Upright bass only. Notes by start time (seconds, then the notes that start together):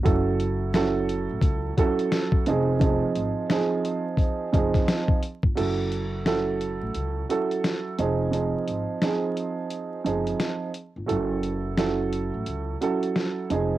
0.06 F#1
1.31 A1
1.42 C#2
2.47 F1
3.16 G#1
4.54 F#1
5.43 G1
5.58 F#1
6.82 A1
6.95 C#2
7.99 F1
8.68 G#1
10.06 F#1
10.96 G1
11.10 F#1
12.34 A1
12.47 C#2
13.51 F1